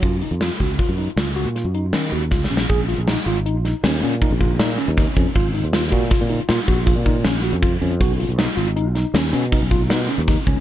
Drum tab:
HH |x--x--x--x--x--x--x--x--x--x--x--x--------|x--x--x--x--x--x--x--x--x--x--x--x--x--x--|x--x--x--x--x--x--x--x--x--x--x--x--x--x--|x--x--x--x--x--x--x--x--x--x--x--x--x--x--|
SD |------o--o--------o-----o-----o-----o-o-o-|------o--------o--o-----------o-----o-----|------o-----o-----o-----------o-----------|------o--------o--o-----------o-----o-----|
BD |o--------o--o-----------------------o-----|o-----------------------o--o--------o--o--|o--------o--o--------o--o--o--------o-----|o-----------------------o--o--------o--o--|